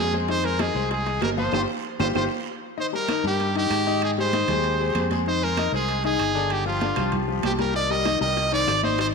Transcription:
Already playing: fingered electric bass F2, trumpet G#4
0.13 grand piano G#3 G#4 C5, high bongo, high conga, short guiro
0.28 grand piano D#3 D#4 D#5, trumpet C5, high bongo, high conga, high timbale, long guiro
0.44 grand piano G#3 G#4 C5, trumpet A#4, high conga, high timbale
0.59 grand piano D#3 D#4 D#5, trumpet G#4, high bongo, high conga, high timbale, short guiro, claves
0.75 fingered electric bass C2, grand piano G#3 G#4 C5, high bongo, high conga, short guiro
0.91 trumpet G#4, high bongo, high conga, high timbale, long guiro
1.06 grand piano D#3 D#4 D#5, high bongo, high conga, high timbale
1.22 fingered electric bass G1, trumpet A#4, high bongo, low bongo, high conga, high timbale, low timbale, short guiro, claves
1.37 grand piano F3 F4 F5, trumpet C5, high bongo, high conga, short guiro
1.52 fingered electric bass G1, grand piano F4 G4 C5, trumpet C5, low bongo, high conga, high timbale, long guiro, claves
1.99 fingered electric bass G1, grand piano F4 G4 C5, trumpet C5, low bongo, high conga, high timbale, long guiro, claves
2.15 fingered electric bass G1, grand piano F4 G4 C5, trumpet C5, low bongo, high conga, high timbale, long guiro, claves
2.77 grand piano D#3 D#4 D#5, trumpet C5, high conga, long guiro
2.93 grand piano G3 G4 A#4, trumpet A#4, high conga
3.08 grand piano D#3 D#4 D#5, high conga, high timbale, short guiro, claves
3.24 fingered electric bass G2, grand piano G3 G4 A#4, trumpet G4, short guiro
3.40 high conga, high timbale, long guiro
3.55 grand piano D#3 D#4 D#5, trumpet G4, high conga, high timbale
3.70 fingered electric bass G#2, high conga, high timbale, short guiro, claves
3.87 grand piano D#3 D#4 D#5, short guiro
4.02 trumpet G#4, high conga, high timbale, long guiro, claves
4.18 grand piano G3 G4 G#4, trumpet C5, high conga
4.33 grand piano D#3 D#4 D#5, high conga, high timbale, short guiro
4.48 fingered electric bass D#2, grand piano G#3 G4 G#4, high conga, low conga, high timbale, short guiro, claves
4.64 high conga, high timbale, long guiro
4.80 grand piano G#3 G4 G#4, high conga
4.95 fingered electric bass F2, high conga, high timbale, short guiro, claves
5.11 grand piano G#3 G#4 C5, high conga, high timbale, short guiro
5.26 grand piano D#3 D#4 D#5, trumpet C5, long guiro
5.42 grand piano G#3 G#4 C5, trumpet A#4, high conga
5.57 grand piano D#3 D#4 D#5, high conga, high timbale, short guiro, claves
5.72 fingered electric bass C2, grand piano G#3 G#4 C5, trumpet G#4, short guiro
5.88 high conga, high timbale, long guiro
6.04 grand piano D#3 D#4 D#5, trumpet G#4, high conga, high timbale
6.19 fingered electric bass G1, high conga, high timbale, short guiro, claves
6.35 grand piano D3 D4 D5, short guiro
6.50 trumpet G4, high conga, high timbale, long guiro, claves
6.66 grand piano F3 F4 G4, trumpet F4, high conga
6.80 grand piano D3 D4 D5, high conga, high timbale, short guiro
6.96 fingered electric bass C2, grand piano F3 F4 G4, high conga, low conga, high timbale, short guiro, claves
7.12 high conga, low conga, high timbale, long guiro
7.28 grand piano F3 F4 G4, high conga
7.43 fingered electric bass C2, trumpet G4, high conga, high timbale, low timbale, short guiro, claves
7.59 grand piano G3 G4 A#4, trumpet A#4, high conga, high timbale, short guiro
7.74 grand piano D#3 D#4 D#5, trumpet D5, high bongo, high conga, long guiro
7.90 grand piano G3 G4 A#4, trumpet D#5, high conga
8.05 grand piano D#3 D#4 D#5, high bongo, high conga, high timbale, short guiro, claves
8.21 fingered electric bass C2, grand piano G3 G4 A#4, trumpet D#5, short guiro
8.37 high bongo, high conga, high timbale
8.52 grand piano D#3 D#4 C5, trumpet D5, high conga, high timbale
8.67 fingered electric bass G#1, high bongo, low bongo, high conga, high timbale, short guiro, claves
8.83 grand piano D#3 D#4 D#5, trumpet C5, high conga, short guiro
8.99 trumpet C5, high bongo, high timbale, long guiro, claves

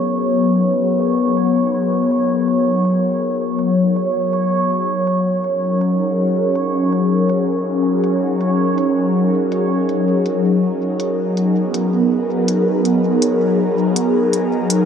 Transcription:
Already playing: analog synth pad F#3 B3 C#4 D#4 G#4 A#4, synth texture C#5
0.63 closed hi-hat
1.00 closed hi-hat
1.37 closed hi-hat
2.11 closed hi-hat
2.48 closed hi-hat
2.85 closed hi-hat
3.59 closed hi-hat
3.96 closed hi-hat
4.33 closed hi-hat
5.07 closed hi-hat
5.27 analog synth pad C#4 A#4
5.44 closed hi-hat
5.50 analog synth pad D#4
5.76 analog synth pad G#4
5.81 closed hi-hat
6.55 closed hi-hat
6.93 closed hi-hat
7.29 closed hi-hat
8.04 closed hi-hat
8.41 closed hi-hat
8.78 closed hi-hat
9.52 closed hi-hat
9.89 closed hi-hat
10.26 closed hi-hat
11.00 closed hi-hat
11.18 analog synth pad B3
11.37 closed hi-hat
11.74 closed hi-hat
12.48 closed hi-hat
12.85 closed hi-hat
13.22 closed hi-hat
13.96 closed hi-hat
14.33 closed hi-hat
14.70 closed hi-hat

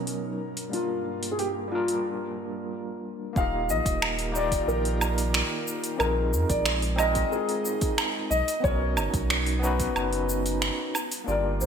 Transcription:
Already playing: analog synth pad B2 F#3 C#4 D#4 A#4, tine electric piano F#3 B3 C#4 D#4 A#4
0.07 open hi-hat
0.39 analog synth pad G2 G3 D4 F4
0.57 open hi-hat
0.69 tine electric piano G3 A#3 D4, grand piano F4, open hi-hat
0.75 tine electric piano F4 A#4
1.23 open hi-hat
1.31 grand piano G#4
1.39 grand piano G4, open hi-hat
1.68 tine electric piano G3 A#3 D4, grand piano F4
1.73 tine electric piano F4 A#4
1.88 open hi-hat
3.33 sub bass D#1, analog synth pad D#3 F4 G4 A#4, tine electric piano A#3 D#4 F4, kick, shaker
3.37 tine electric piano G4 D#5, grand piano F5
3.69 sub bass A#1, grand piano D#5, shaker
3.86 sub bass D#1, kick, open hi-hat, shaker
4.02 finger snap, low woodblock, shaker
4.19 open hi-hat
4.32 tine electric piano A#3 D#4 F4, grand piano D5, shaker
4.37 tine electric piano G4 D5
4.52 kick, open hi-hat, shaker
4.68 sub bass A#1, grand piano A#4, shaker
4.85 open hi-hat
5.01 low woodblock, shaker
5.18 open hi-hat, shaker
5.34 finger snap, shaker
5.67 shaker
5.84 open hi-hat, shaker
5.97 sub bass A#1, analog synth pad G#3 D#4, tine electric piano C4 D#4 F4, grand piano A#4, low woodblock, shaker
6.02 tine electric piano G#4 A#4
6.33 sub bass F2, shaker
6.49 sub bass A#1, grand piano D5, kick, open hi-hat, shaker
6.66 finger snap, shaker
6.82 open hi-hat
6.96 tine electric piano C4 D#4 F4, grand piano D#5, low woodblock, shaker
7.01 tine electric piano G#4 A#4
7.15 kick, open hi-hat, shaker
7.32 grand piano G#4, shaker
7.49 open hi-hat
7.65 shaker
7.81 kick, open hi-hat, shaker
7.98 finger snap, low woodblock, shaker
8.30 sub bass B1, analog synth pad B3, grand piano D#5, shaker
8.48 open hi-hat, shaker
8.60 sub bass B1, tine electric piano B3 C#4 D#4, grand piano C#5, kick
8.65 tine electric piano F#4 A#4, shaker
8.97 sub bass F#1, low woodblock, shaker
9.14 sub bass B1, kick, open hi-hat, shaker
9.30 finger snap, shaker
9.47 open hi-hat
9.59 tine electric piano B3 C#4 D#4, grand piano B4, shaker
9.65 tine electric piano F#4 B4
9.80 kick, open hi-hat, shaker
9.96 sub bass F#1, low woodblock, shaker
10.13 open hi-hat
10.29 shaker
10.46 open hi-hat, shaker
10.62 finger snap, shaker
10.95 analog synth pad G3 F4, low woodblock, shaker
11.12 open hi-hat, shaker
11.24 sub bass G1, tine electric piano A#3 D4 F4, grand piano D5, shaker
11.29 tine electric piano G4 A#4
11.61 sub bass D2, grand piano C5, shaker

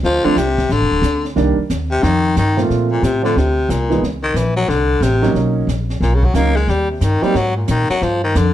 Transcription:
0.03 upright bass D2, baritone saxophone F3, brush sweep, snare
0.24 baritone saxophone D3, grand piano F3 A3 C4 D4, muted upright bass stroke
0.36 upright bass C2, baritone saxophone C3, snare, hi-hat pedal
0.58 kick, snare
0.69 upright bass A1, baritone saxophone D3, brush sweep, snare
0.81 upright bass F1
0.91 upright bass D1
1.02 upright bass D2, snare, hi-hat pedal
1.25 snare
1.36 upright bass C2, grand piano D#3 G3 A#3 D4, brush sweep, snare
1.58 muted upright bass stroke
1.70 upright bass D#2, snare, hi-hat pedal
1.91 baritone saxophone C3
2.03 upright bass F2, baritone saxophone D#3, brush sweep, snare
2.36 upright bass G2, baritone saxophone D#3, snare, hi-hat pedal
2.57 grand piano A#2 F3 A3 C4 F4, snare
2.70 upright bass A#2, brush sweep, snare
2.92 baritone saxophone A#2
3.02 upright bass A2, baritone saxophone C3, snare, hi-hat pedal
3.22 baritone saxophone D3, grand piano F3 A3 C4 D4, snare
3.36 upright bass D2, baritone saxophone C3, brush sweep, snare
3.69 upright bass C2, baritone saxophone A#2, snare, hi-hat pedal
3.90 grand piano E3 G#3 B3 D#4, snare
4.02 upright bass C#2, brush sweep, snare
4.23 baritone saxophone D#3
4.34 upright bass A#1, baritone saxophone E3, snare, hi-hat pedal
4.56 baritone saxophone F#3, snare
4.68 upright bass C2, baritone saxophone D3, brush sweep, snare
5.01 upright bass A1, baritone saxophone C3, snare, hi-hat pedal
5.22 grand piano F#3 A#3 C#4 D#4, snare
5.34 upright bass B1, brush sweep, snare
5.67 upright bass A#1, snare, hi-hat pedal
5.90 snare
6.00 upright bass B1, baritone saxophone A#2, brush sweep, snare
6.15 baritone saxophone C#3
6.23 baritone saxophone F#3, kick
6.34 upright bass C#2, grand piano F#3 A#3 C#4 D#4, baritone saxophone A#3, snare, hi-hat pedal
6.56 baritone saxophone G#3, snare
6.67 upright bass D#2, baritone saxophone G3, brush sweep, snare
6.90 baritone saxophone C3
7.01 upright bass G2, baritone saxophone D#3, snare, hi-hat pedal
7.22 grand piano F#3 A#3 C4 D#4, baritone saxophone G3, muted upright bass stroke, snare
7.35 upright bass G#2, baritone saxophone F#3, brush sweep, snare
7.57 baritone saxophone A#2
7.68 upright bass A#2, baritone saxophone D#3, snare, hi-hat pedal
7.89 baritone saxophone F#3, muted upright bass stroke, snare
8.02 upright bass G2, baritone saxophone F3, brush sweep, snare
8.24 baritone saxophone D#3
8.35 upright bass F2, baritone saxophone D3, snare, hi-hat pedal

